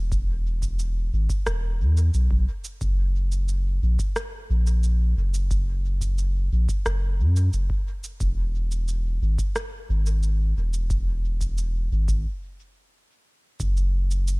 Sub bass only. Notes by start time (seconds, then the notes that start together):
Already playing: E1
1.13 G#1
1.47 E1
1.80 E2
2.14 B1
2.31 B1
2.81 F#1
3.83 A#1
4.50 A#1
5.17 F#1
6.52 A#1
6.86 F#1
7.20 F#2
7.53 F#1
8.20 E1
9.22 G#1
9.89 G#1
10.57 E1
11.92 G#1
13.60 F#1